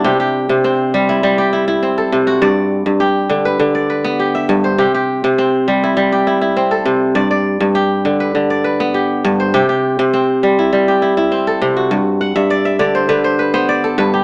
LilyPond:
<<
  \new Staff \with { instrumentName = "Kora" } { \time 4/4 \key c \lydian \tempo 4 = 101 <d' g'>16 g'8. c'8. e'8 g'16 e'8 c'16 a'8 fis'16 | d''8. r16 g'8. b'8 d''16 b'8 g'16 e''8 c''16 | g'16 g'8. c'8. e'8 g'16 e'8 c'16 a'8. | d''16 d''8. g'8. b'8 d''16 b'8 g'8. c''16 |
g'16 g'8. c'8. e'8 g'16 e'8 c'16 a'8 fis'16~ | fis'16 r16 fis''16 e''16 d''16 e''16 d''16 c''16 b'16 c''16 b'16 c''16 d''16 a'16 b'16 g'16 | }
  \new Staff \with { instrumentName = "Kora" } { \clef bass \time 4/4 \key c \lydian c8 r16 c8 r16 g8 g8 r16 e'8 r16 c8 | g,8 r16 g,8 r16 d8 d8 r16 b8 r16 g,8 | c8 r16 c8 r16 g8 g8 r16 e'8 r16 c8 | g,8 r16 g,8 r16 d8 d8 r16 b8 r16 g,8 |
c8 r16 c8 r16 g8 g8 r16 e'8 r16 c8 | g,8 r16 g,8 r16 d8 d8 r16 b8 r16 g,8 | }
>>